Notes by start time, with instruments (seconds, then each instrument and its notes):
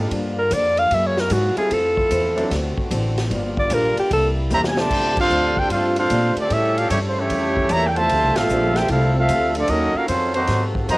Already playing: trombone section C3 F3, grand piano A#3
0.00 grand piano F4 G4 A4
0.09 steel-string acoustic guitar G2 F3 A#3 D4, upright bass G2, trombone section D3 G3 A#3 F4, kick, ride
0.39 alto saxophone A#4
0.50 upright bass F2, steel-string acoustic guitar G2 F3 A#3 D4, alto saxophone D5, kick, hi-hat pedal, ride
0.77 alto saxophone F5, ride
0.90 upright bass F#2, steel-string acoustic guitar F#3 A#3 E4 G#4, trombone section G#3 A#3 E4 F#4, kick, ride
0.94 alto saxophone E5
1.07 alto saxophone C#5
1.18 alto saxophone A#4, snare
1.30 upright bass G#2, steel-string acoustic guitar F#3 A#3 E4 G#4, alto saxophone F#4, kick, hi-hat pedal, ride
1.56 grand piano G3 C4 E4 F4 A4, alto saxophone G#4, muted upright bass stroke, ride
1.70 upright bass F2, steel-string acoustic guitar F3 C4 E4 A4, trombone section A3 C4 F4, alto saxophone A4, kick, ride
1.97 kick
2.11 upright bass E2, steel-string acoustic guitar F3 C4 E4 A4, kick, hi-hat pedal, ride
2.36 grand piano F#3 C4 D4 E4 A4, ride
2.50 upright bass D2, trombone section D3 F#4, steel-string acoustic guitar D3 C4 F#4 A4, kick, snare, ride
2.77 muted upright bass stroke, kick
2.90 upright bass A1, steel-string acoustic guitar D3 C4 F#4 A4, kick, hi-hat pedal, ride
3.17 snare, ride
3.29 upright bass G1, steel-string acoustic guitar G2 F3 A#3 D4, trombone section D3 G3 A#3 F4, kick, ride
3.57 alto saxophone D5, kick
3.70 upright bass A#1, steel-string acoustic guitar G2 F3 A#3 D4, grand piano G3 A#3 D4 F4 A4, alto saxophone A#4, kick, hi-hat pedal, ride
3.97 alto saxophone G4, muted upright bass stroke, ride
4.11 upright bass C2, steel-string acoustic guitar C3 G3 A#3 E4, trombone section C3 A#3 E4, alto saxophone A4, kick, ride
4.50 upright bass E2, steel-string acoustic guitar C3 G3 A#3 E4, trombone section E3 G3 A#3, grand piano G3 C4 D4 E4 A#4, trumpet section G4 C5 E5 A#5, hi-hat pedal
4.64 trumpet section G#5, snare
4.77 trombone section C3 D3 A3, trumpet section G4 C5 D5 A5, snare
4.89 upright bass F2, trombone section D3 G3 A3 F4, steel-string acoustic guitar F3 A3 D4 G4, kick, crash
5.17 trombone section C4 D4 F4, trumpet section D4 A4 C5 F5, kick, crash
5.30 upright bass D2, steel-string acoustic guitar F3 A3 D4 G4, hi-hat pedal
5.57 trombone section C4 D4 G4, trumpet section D4 A4 C5 G5, kick
5.70 upright bass G2, steel-string acoustic guitar F3 A3 D4 G4, trombone section C4 D4 F4, trumpet section D4 A4 C5 F5, kick, ride
5.96 trombone section C4 D4 F4, trumpet section D4 A4 C5 F5, ride
6.10 upright bass A#2, steel-string acoustic guitar F3 A3 D4 G4, kick, hi-hat pedal, ride
6.36 trombone section D3 A3 D4, muted upright bass stroke, ride
6.40 trumpet section C4 G4 A4 D5
6.50 steel-string acoustic guitar A2 G3 C#4 F4, upright bass A2, trombone section C#3 G3 C#4 E4 A4, trumpet section C#4 G4 E5, kick, ride
6.54 trumpet section A4
6.78 trombone section G3 C#4 F4, trumpet section C#4 G4 A4 F5, ride
6.90 upright bass G2, steel-string acoustic guitar A2 G3 C#4 F4, trombone section E3 G3 C#4, trumpet section A3 E4 G4 C#5, kick, hi-hat pedal, ride
7.08 trumpet section C5
7.18 trombone section E3 G3 C#4, trumpet section A3 E4 G4 C#5
7.30 upright bass F2, steel-string acoustic guitar A2 G3 C#4 F4, kick, ride
7.57 kick
7.69 upright bass E2, steel-string acoustic guitar A2 G3 C#4 F4, trombone section A#3, trumpet section G4 C#5 E5 A#5, kick, hi-hat pedal, ride
7.87 trumpet section G5
7.96 trombone section C3 F3 A3, trumpet section F4 C5 E5 A5, ride
8.09 upright bass D2, steel-string acoustic guitar D3 G3 C4 F4, trombone section F3 C4, kick, ride
8.23 upright bass C2
8.36 upright bass A1, trombone section A3 C4 F4, trumpet section C4 A4 E5 F5, snare, ride
8.49 upright bass A#1, steel-string acoustic guitar D3 G3 C4 F4, hi-hat pedal
8.76 trombone section A3 C4 G4, trumpet section F4 C5 E5 G5, snare, ride
8.88 upright bass C2, steel-string acoustic guitar D3 G3 C4 F4, trombone section A3 C4 F4, trumpet section C4 E4 A4 F5, kick, ride
9.16 trombone section A3 C4 F4, trumpet section C4 A4 E5 F5
9.28 upright bass D2, steel-string acoustic guitar D3 G3 C4 F4, kick, hi-hat pedal, ride
9.55 trombone section F3 A3 D4, trumpet section C4 F4 A4 D5, ride
9.68 upright bass D#2, steel-string acoustic guitar D#3 F#3 C#4 F4, trombone section D#3 F#3 A#3 C#4 D#4 F#4, trumpet section C#4 F#4 A#4 D#5, kick, ride
9.94 trombone section A#3 C#4 F4, trumpet section C#4 F#4 A#4 F5, muted upright bass stroke
10.08 upright bass F2, steel-string acoustic guitar D#3 F#3 C#4 F4, trumpet section G#3 C#4 F4 C5, trombone section C4, kick, hi-hat pedal, ride
10.34 trombone section D#3 F#3 C4, trumpet section A#3 D#4 F#4 C5, ride
10.47 steel-string acoustic guitar G#2 F#3 C4 F4, upright bass G#2, trombone section C3 A#3, kick, snare, ride
10.75 kick
10.88 upright bass F#2, steel-string acoustic guitar G#2 F#3 C4 F4, trombone section D#3 F#3 A#3, trumpet section F#4 C5 D#5 A#5, kick, hi-hat pedal, ride